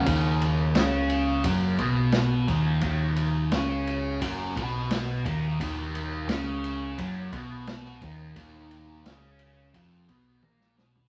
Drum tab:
RD |x-x-x-x-x-x-x-x-|x-x-x-x-x-x-x-x-|x-x-x-x-x-x-x-x-|x-x-x-x-x-x-----|
SD |----o-------o-o-|----o-------o---|----o-------oo--|----o--------oo-|
T1 |----------------|----------------|----------------|------------o---|
FT |----------------|----------------|----------------|---------------o|
BD |o-------o-o---o-|o-------o-o---o-|o-------o-o---o-|o-------o-o-----|